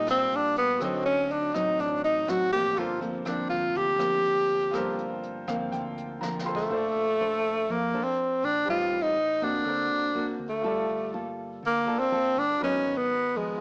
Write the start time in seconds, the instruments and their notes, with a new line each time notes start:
Already playing: fingered electric bass A#1, nylon-string guitar A#2, grand piano F4 G4 A#4 D5
0.07 nylon-string guitar G3 D4 F4, tenor saxophone C4, cross-stick, closed hi-hat
0.31 fingered electric bass A#1, closed hi-hat
0.36 tenor saxophone D4
0.56 tenor saxophone B3, closed hi-hat
0.78 fingered electric bass D2, nylon-string guitar D3 F#3, grand piano F#4 A4, kick, cross-stick, closed hi-hat
0.82 nylon-string guitar C4 D#4, tenor saxophone C4, grand piano C5 D#5
1.06 tenor saxophone C#4, closed hi-hat
1.30 tenor saxophone D4, closed hi-hat
1.54 fingered electric bass A1, nylon-string guitar F#3 C4 D#4, tenor saxophone D#4, kick, cross-stick, closed hi-hat
1.79 fingered electric bass A1, nylon-string guitar A2, tenor saxophone D4, kick, closed hi-hat
2.04 tenor saxophone D#4, closed hi-hat
2.27 fingered electric bass A1, nylon-string guitar F#3 C4 D#4, tenor saxophone F#4, cross-stick, closed hi-hat
2.52 nylon-string guitar F3 A#3 C4, tenor saxophone G4, kick, closed hi-hat
2.74 fingered electric bass G1, nylon-string guitar G2, grand piano F4 A4, kick, closed hi-hat
2.78 tenor saxophone F4, grand piano A#4 C5
3.01 nylon-string guitar F3 A#3 C4, tenor saxophone A3, closed hi-hat
3.25 nylon-string guitar F3 A#3 C4, tenor saxophone D4, cross-stick, closed hi-hat
3.50 fingered electric bass D2, tenor saxophone F4, kick, closed hi-hat
3.75 fingered electric bass D2, nylon-string guitar D3, tenor saxophone G4, kick, closed hi-hat
3.98 nylon-string guitar F3 A#3 C4, cross-stick, closed hi-hat
4.25 fingered electric bass D2, closed hi-hat
4.49 closed hi-hat
4.71 fingered electric bass G1, nylon-string guitar G2 F3 A#3 C4, grand piano F4 A4, kick, cross-stick, closed hi-hat
4.75 grand piano A#4 C5
4.99 closed hi-hat
5.23 closed hi-hat
5.47 fingered electric bass D2, nylon-string guitar F3 A#3 C4, grand piano F5, kick, cross-stick, closed hi-hat
5.72 fingered electric bass D2, nylon-string guitar D3, grand piano G5, kick, closed hi-hat
5.98 closed hi-hat
6.21 fingered electric bass D2, nylon-string guitar F3 A#3 C4, grand piano A#5, snare
6.39 snare
6.44 grand piano F4 A4 A#4 C5 C6
6.55 tenor saxophone A3, kick
6.68 fingered electric bass A#1, nylon-string guitar D4 A4 C5, grand piano F4 A4
6.72 grand piano C5 D5
6.95 fingered electric bass A#1
7.20 nylon-string guitar D4 A4 C5
7.69 fingered electric bass F2, nylon-string guitar F3, tenor saxophone A#3
7.94 nylon-string guitar D4 A4 C5
8.04 tenor saxophone C4
8.43 fingered electric bass A#1, tenor saxophone D4
8.65 fingered electric bass A1, nylon-string guitar A2 G3 C4 D#4, grand piano G4 B4
8.69 tenor saxophone F4, grand piano C5 D#5
8.91 fingered electric bass A1
9.02 tenor saxophone D#4
9.41 nylon-string guitar A#3 C4 F#4, tenor saxophone D4
9.63 fingered electric bass D2, nylon-string guitar D3, grand piano F#4 A4 A#4
9.69 grand piano C5
10.15 nylon-string guitar A#3 C4 F#4
10.39 fingered electric bass D2
10.50 tenor saxophone A3
10.61 fingered electric bass G1, nylon-string guitar G3 F4 A4, grand piano F4 A4
10.67 grand piano D5
10.89 fingered electric bass G1
11.13 nylon-string guitar A#3 F4 A4
11.63 fingered electric bass D2, nylon-string guitar D3, tenor saxophone A#3
11.85 nylon-string guitar A#3 F4 A4, grand piano F4 A4 A#4 D5
11.99 tenor saxophone C4
12.11 nylon-string guitar A#3 F4 A4
12.37 fingered electric bass G1, tenor saxophone D4
12.58 fingered electric bass G#1, nylon-string guitar G#2 F#3, grand piano F#4 A#4
12.62 nylon-string guitar B3 D#4, tenor saxophone C#4, grand piano B4 D#5
12.85 fingered electric bass G#1
12.97 tenor saxophone B3
13.35 nylon-string guitar F3 B3, tenor saxophone G#3
13.57 grand piano F4